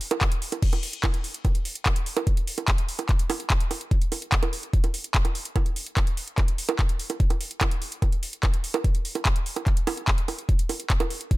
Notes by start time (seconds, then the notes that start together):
0.01 open hi-hat
0.11 closed hi-hat, high bongo
0.21 kick, clap, closed hi-hat
0.32 closed hi-hat
0.42 open hi-hat
0.52 closed hi-hat, high bongo
0.62 kick, closed hi-hat, crash
0.73 closed hi-hat, high bongo
0.83 open hi-hat
0.93 closed hi-hat
1.04 kick, clap, closed hi-hat, high bongo
1.14 closed hi-hat
1.24 open hi-hat
1.34 closed hi-hat
1.45 kick, closed hi-hat, high bongo
1.55 closed hi-hat
1.65 open hi-hat
1.75 closed hi-hat
1.86 kick, clap, closed hi-hat, high bongo
1.96 closed hi-hat
2.06 open hi-hat
2.17 closed hi-hat, high bongo
2.27 kick, closed hi-hat
2.37 closed hi-hat
2.47 open hi-hat
2.58 closed hi-hat, high bongo
2.68 kick, clap, closed hi-hat
2.78 closed hi-hat
2.89 open hi-hat
2.99 closed hi-hat, high bongo
3.09 kick, clap, closed hi-hat
3.19 closed hi-hat
3.30 open hi-hat, high bongo
3.40 closed hi-hat
3.50 kick, clap, closed hi-hat
3.60 closed hi-hat
3.71 open hi-hat, high bongo
3.81 closed hi-hat
3.91 kick, closed hi-hat
4.02 closed hi-hat
4.12 open hi-hat, high bongo
4.22 closed hi-hat
4.32 kick, clap, closed hi-hat
4.43 closed hi-hat, high bongo
4.53 open hi-hat
4.63 closed hi-hat
4.73 kick, closed hi-hat
4.84 closed hi-hat, high bongo
4.94 open hi-hat
5.04 closed hi-hat
5.15 kick, clap, closed hi-hat
5.25 closed hi-hat, high bongo
5.35 open hi-hat
5.45 closed hi-hat
5.56 kick, closed hi-hat, high bongo
5.66 closed hi-hat
5.76 open hi-hat
5.86 closed hi-hat
5.97 kick, clap, closed hi-hat, high bongo
6.07 closed hi-hat
6.17 open hi-hat
6.28 closed hi-hat
6.38 kick, clap, closed hi-hat, high bongo
6.48 closed hi-hat
6.58 open hi-hat
6.69 closed hi-hat, high bongo
6.79 kick, clap, closed hi-hat
6.89 closed hi-hat
6.99 open hi-hat
7.10 closed hi-hat, high bongo
7.20 kick, closed hi-hat
7.30 closed hi-hat, high bongo
7.41 open hi-hat
7.51 closed hi-hat
7.61 kick, clap, closed hi-hat, high bongo
7.71 closed hi-hat
7.82 open hi-hat
7.92 closed hi-hat
8.02 kick, closed hi-hat, high bongo
8.12 closed hi-hat
8.23 open hi-hat
8.33 closed hi-hat
8.43 kick, clap, closed hi-hat, high bongo
8.54 closed hi-hat
8.64 open hi-hat
8.74 closed hi-hat, high bongo
8.84 kick, closed hi-hat
8.95 closed hi-hat
9.05 open hi-hat
9.15 closed hi-hat, high bongo
9.25 kick, clap, closed hi-hat
9.36 closed hi-hat
9.46 open hi-hat
9.56 closed hi-hat, high bongo
9.67 kick, clap, closed hi-hat
9.77 closed hi-hat
9.87 open hi-hat, high bongo
9.97 closed hi-hat
10.08 kick, clap, closed hi-hat
10.18 closed hi-hat
10.28 open hi-hat, high bongo
10.39 closed hi-hat
10.49 kick, closed hi-hat
10.59 closed hi-hat
10.69 open hi-hat, high bongo
10.80 closed hi-hat
10.90 kick, clap, closed hi-hat
11.00 closed hi-hat, high bongo
11.10 open hi-hat
11.21 closed hi-hat
11.31 kick, closed hi-hat